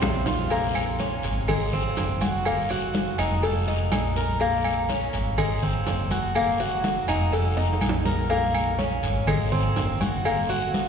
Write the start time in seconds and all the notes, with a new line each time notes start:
Already playing: C4
0.02 A#1, high bongo, low bongo, high conga, low timbale, short guiro, claves
0.26 F4, high conga, low timbale, short guiro
0.50 A#3, cowbell, high conga, low agogo, long guiro
0.75 high conga, low agogo, claves
0.99 C#4, cowbell, high conga, low timbale, short guiro
1.23 G#1, cowbell, low agogo, short guiro
1.47 G#3, cowbell, high conga, low conga, low agogo, long guiro, claves
1.73 C4, high conga, low conga
1.96 F#1, cowbell, high conga, low timbale, low agogo, short guiro
2.21 F#4, high conga, low agogo, short guiro
2.45 A#3, cowbell, high conga, low agogo, long guiro, claves
2.70 F#4, high conga, low agogo
2.94 cowbell, high conga, low timbale, short guiro
3.18 F1 D#4, cowbell, high conga, low agogo, short guiro, claves
3.43 A4, cowbell, high conga, low agogo, long guiro
3.67 D#4, cowbell, high conga
3.92 A#1, cowbell, high conga, low timbale, low agogo, short guiro, claves
4.16 A#4, short guiro
4.40 A#3, cowbell, high conga, low agogo, long guiro
4.64 high conga, low agogo, claves
4.89 C#4, cowbell, high conga, low timbale, short guiro
5.13 G#1, cowbell, low agogo, short guiro
5.38 G#3, cowbell, high conga, low conga, low agogo, long guiro, claves
5.63 C4, high conga, low conga
5.87 F#1, cowbell, high conga, low timbale, low agogo, short guiro
6.11 F#4, high conga, low agogo, short guiro
6.35 A#3, cowbell, high conga, low agogo, long guiro, claves
6.60 F#4, high conga, low agogo
6.83 cowbell, high conga, low timbale, short guiro
7.08 F1 D#4, cowbell, high conga, low agogo, short guiro, claves
7.32 A4, cowbell, high conga, low agogo, long guiro
7.57 D#4, cowbell, high conga, high timbale
7.73 low timbale
7.81 A#1, cowbell, high conga, low agogo, short guiro, claves
7.89 low timbale
8.05 A#4, high conga, low timbale, short guiro
8.30 A#3, cowbell, high conga, low agogo, long guiro
8.55 high conga, low agogo, claves
8.79 C#4, cowbell, high conga, low timbale, short guiro
9.03 G#1, cowbell, low agogo, short guiro
9.27 G#3, cowbell, high conga, low conga, low agogo, long guiro, claves
9.52 C4, high conga, low conga
9.76 F#1, cowbell, high conga, low timbale, low agogo, short guiro
10.01 F#4, high conga, low agogo, short guiro
10.25 A#3, cowbell, high conga, low agogo, long guiro, claves
10.49 F#4, high conga, low agogo
10.74 cowbell, high conga, low timbale, short guiro